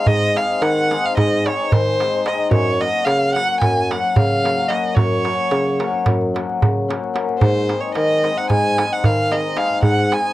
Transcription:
Already playing: hammered dulcimer G#3
0.06 bassoon G#2, violin D#5, darbuka dum
0.21 darbuka tek
0.34 hammered dulcimer G#3 C4 D#4 G#4, violin F5, darbuka tek
0.62 bassoon D#3, violin F#5, darbuka tek
0.77 darbuka tek
0.91 hammered dulcimer G#3 C4 D#4 G#4, darbuka tek
1.04 violin F5, darbuka tek
1.17 bassoon G#2, violin D#5, darbuka tek, darbuka dum
1.46 hammered dulcimer G#3 C4 D#4 G#4, violin C#5, darbuka tek
1.72 bassoon D#3, violin C5, darbuka dum
1.99 hammered dulcimer G#3 C4 D#4 G#4, darbuka tek
2.13 darbuka tek
2.26 hammered dulcimer G#3 C4 D#4 G#4, violin D#5, darbuka tek
2.38 darbuka tek
2.50 bassoon F#2, violin C#5, darbuka dum
2.66 darbuka tek
2.80 hammered dulcimer F#3 A#3 C#4 F#4, violin D#5, darbuka tek
3.05 bassoon C#3, violin F5, darbuka tek
3.22 darbuka tek
3.34 hammered dulcimer F#3 A#3 C#4 F#4, violin F#5, darbuka tek
3.49 darbuka tek
3.61 bassoon F#2, violin G#5, darbuka tek, darbuka dum
3.89 hammered dulcimer F#3 A#3 C#4 F#4, violin F#5, darbuka tek
4.09 violin F#5
4.15 bassoon C#3, violin F5, darbuka dum
4.43 hammered dulcimer F#3 A#3 C#4 F#4, darbuka tek
4.58 darbuka tek
4.68 hammered dulcimer F#3 A#3 C#4 F#4, violin D#5, darbuka tek
4.84 darbuka tek
4.95 bassoon F#2, violin C#5, darbuka dum
5.11 darbuka tek
5.24 hammered dulcimer F#3 A#3 C#4 F#4, darbuka tek
5.51 bassoon C#3, darbuka tek
5.66 darbuka tek
5.79 hammered dulcimer F#3 A#3 C#4 F#4, darbuka tek
5.93 darbuka tek
6.06 bassoon F#2, darbuka tek, darbuka dum
6.21 darbuka tek
6.34 hammered dulcimer F#3 A#3 C#4 F#4, darbuka tek
6.49 darbuka tek
6.62 bassoon C#3, darbuka dum
6.88 hammered dulcimer F#3 A#3 C#4 F#4, darbuka tek
7.04 darbuka tek
7.14 hammered dulcimer F#3 A#3 C#4 F#4, darbuka tek
7.29 darbuka tek
7.39 bassoon G#2, violin C5, darbuka dum
7.55 darbuka tek
7.68 hammered dulcimer G#3 C4 D#4 G#4, darbuka tek
7.80 violin C#5
7.95 bassoon D#3, violin D#5, darbuka tek
8.10 darbuka tek
8.22 hammered dulcimer G#3 C4 D#4 G#4, darbuka tek
8.36 violin F#5, darbuka tek
8.50 bassoon G#2, violin G#5, darbuka tek, darbuka dum
8.77 hammered dulcimer G#3 C4 D#4 G#4, darbuka tek
8.92 violin F#5
9.04 bassoon D#3, violin F5, darbuka dum
9.30 hammered dulcimer G#3 C4 D#4 G#4, violin D#5, darbuka tek
9.56 hammered dulcimer G#3 C4 D#4 G#4, violin F5, darbuka tek
9.70 darbuka tek
9.82 bassoon G#2, violin F#5, darbuka dum
10.11 hammered dulcimer G#3 C4 D#4 G#4, violin G#5, darbuka tek

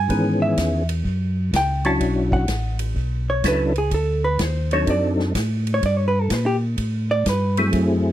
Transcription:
Already playing: hollow-body jazz guitar G#5
0.09 tonewheel organ G#2 D#3 E3 B3 C#4 G#4, kick, ride
0.42 hollow-body jazz guitar E5
0.57 tonewheel organ E2, kick, snare, hi-hat pedal, ride
0.89 ride
1.05 tonewheel organ F#2, kick
1.53 tonewheel organ C#2, hollow-body jazz guitar G5, kick, snare, hi-hat pedal, ride
1.85 tonewheel organ F#3 C#4 D4 E4 F#4, hollow-body jazz guitar A5, ride
2.00 tonewheel organ B1, kick, ride
2.32 hollow-body jazz guitar F#5, kick
2.48 tonewheel organ A1, kick, snare, hi-hat pedal, ride
2.79 ride
2.96 tonewheel organ B1, kick
3.30 hollow-body jazz guitar C#5
3.44 tonewheel organ C#2 F#3 C#4 D4 E4 A4, kick, snare, hi-hat pedal, ride
3.48 hollow-body jazz guitar B4
3.75 hollow-body jazz guitar G#4, ride
3.91 tonewheel organ D2, hollow-body jazz guitar A4, kick, ride
4.24 hollow-body jazz guitar B4
4.39 tonewheel organ D#2, kick, snare, hi-hat pedal, ride
4.43 hollow-body jazz guitar C5
4.71 tonewheel organ F#3 C4 D4 D#4 A4, hollow-body jazz guitar C#5, ride
4.87 tonewheel organ F#2, hollow-body jazz guitar D5, kick, ride
5.19 snare
5.35 tonewheel organ A2, kick, snare, hi-hat pedal, ride
5.67 ride
5.74 hollow-body jazz guitar C#5
5.82 tonewheel organ G2, hollow-body jazz guitar D5, kick, ride
5.98 hollow-body jazz guitar C#5
6.08 hollow-body jazz guitar B4
6.22 hollow-body jazz guitar A4
6.30 tonewheel organ A#2, hollow-body jazz guitar B4, kick, snare, hi-hat pedal, ride
6.46 hollow-body jazz guitar G4
6.78 tonewheel organ A2, kick, ride
7.11 hollow-body jazz guitar D5
7.25 tonewheel organ G2, hollow-body jazz guitar B4, kick, snare, hi-hat pedal, ride
7.57 tonewheel organ F#3 A3 C4 E4 G#4, ride
7.73 tonewheel organ F#2, kick, ride

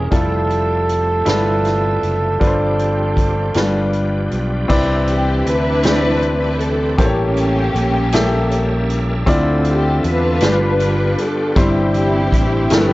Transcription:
Already playing: tonewheel organ C3, grand piano A#3 C#4 E4 G#4 A#4
0.06 trumpet G#4
0.11 fingered electric bass F1, tonewheel organ F3 A3 G4 E5, grand piano G3 E4 F4 A4, kick, closed hi-hat
0.15 trumpet A4
0.50 closed hi-hat
0.89 closed hi-hat
1.25 fingered electric bass G1, grand piano G3 E4 F4 B4, snare, closed hi-hat
1.65 snare, closed hi-hat
2.03 fingered electric bass F#1, closed hi-hat
2.39 fingered electric bass G1, grand piano G2 G3 D4 F4 B4, tonewheel organ F3 G3 C4 D4 G4, kick, closed hi-hat
2.47 grand piano C5
2.79 closed hi-hat
3.17 kick, closed hi-hat
3.54 fingered electric bass G1, grand piano G2 G3 D4 F4 B4, tonewheel organ B3, snare, closed hi-hat
3.93 closed hi-hat
4.31 fingered electric bass B1, closed hi-hat
4.68 fingered electric bass C2, grand piano C3 C4 E4 B4 D5, tonewheel organ E3 C4 D4 G4 B4, kick, crash
5.07 string section G4, closed hi-hat
5.45 fingered electric bass D2, string section D4 E4 B4, closed hi-hat
5.83 grand piano C4 E4 B4 C5, snare, closed hi-hat
5.91 grand piano D5
6.23 closed hi-hat
6.60 string section A4, closed hi-hat
6.97 fingered electric bass A1, grand piano A2 A#3 G4 A4 C5, tonewheel organ G3 A#3 C#4 A4 E5, string section G4, kick, closed hi-hat
7.01 string section A#3 C#4, grand piano C#5
7.37 closed hi-hat
7.74 fingered electric bass A#1, closed hi-hat
8.12 grand piano A#3 G4 A4 E5, snare, closed hi-hat
8.51 closed hi-hat
8.89 closed hi-hat
9.26 fingered electric bass D2, grand piano D3 C4 E4 F4 D5, tonewheel organ D3 A3 C4, kick, closed hi-hat
9.65 closed hi-hat
9.70 string section G4
10.04 fingered electric bass E2, string section D4 F4, closed hi-hat
10.08 string section B4
10.40 fingered electric bass G1, grand piano G2 G3 D4 F4 B4, tonewheel organ G3 B3 F4 G4, snare, closed hi-hat
10.80 closed hi-hat
11.18 string section A4, closed hi-hat
11.55 fingered electric bass G1, grand piano G2 G3 C4 E4 C5, tonewheel organ C3 E3 E4, string section C4 E4 G4, kick, closed hi-hat
11.94 closed hi-hat
12.32 fingered electric bass A1, kick, closed hi-hat
12.70 fingered electric bass G1, grand piano G2 F3 A3 E4 A#4, tonewheel organ F3 G3 A3, snare, closed hi-hat
12.78 grand piano B4

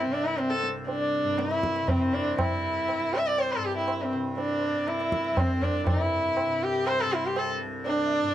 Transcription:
Already playing: tanpura C2 G2 C3
0.01 sarangi C4, harmonium E5
0.07 tanpura C3
0.13 sarangi D4
0.25 sarangi E4
0.37 sarangi C4, harmonium E5, tabla te
0.50 sarangi A4, harmonium C5
0.63 tanpura C2, tabla te
0.88 sarangi D4, tabla tin
1.01 harmonium D5
1.24 tanpura G2
1.39 sarangi E4, tabla te
1.50 harmonium E5, tabla te
1.63 tabla ke
1.76 tabla te
1.83 tanpura C3
1.88 sarangi C4, tabla tin, tabla ge
2.01 harmonium C5
2.14 sarangi D4
2.39 sarangi E4, tabla na, tabla ge
2.51 harmonium E5
2.88 tabla na
2.99 tanpura C2
3.13 sarangi E5, tabla na
3.27 sarangi D5, harmonium E5
3.38 sarangi C5, harmonium D5, tabla na
3.51 sarangi A4, harmonium C6
3.57 tanpura G2
3.64 sarangi G4, harmonium A5
3.77 sarangi E4, harmonium G5
3.88 harmonium E5, tabla na
4.02 sarangi C4
4.13 tanpura C3, harmonium C5, tabla na
4.38 sarangi D4, tabla tin
4.51 harmonium D5
4.58 harmonium C5
4.64 harmonium D5
4.74 tanpura C3
4.88 sarangi E4, tabla te
5.00 harmonium E5, tabla te
5.12 tabla ke
5.24 tabla te
5.31 tanpura C2
5.37 sarangi C4, tabla na, tabla ge
5.51 harmonium C5
5.62 sarangi D4, tabla ge
5.76 harmonium D5
5.87 tanpura G2, sarangi E4, tabla na, tabla ge
5.99 harmonium E5
6.37 tabla na
6.47 tanpura C3
6.63 sarangi G4
6.87 sarangi C5, tabla na
6.99 sarangi A4, harmonium C6
7.06 tanpura C3
7.13 sarangi E4
7.26 sarangi G4
7.36 sarangi A4, tabla na
7.50 harmonium A5
7.64 tanpura C2
7.86 sarangi D4, tabla tin
7.98 harmonium D5
8.06 harmonium E5
8.12 harmonium D5
8.22 tanpura G2

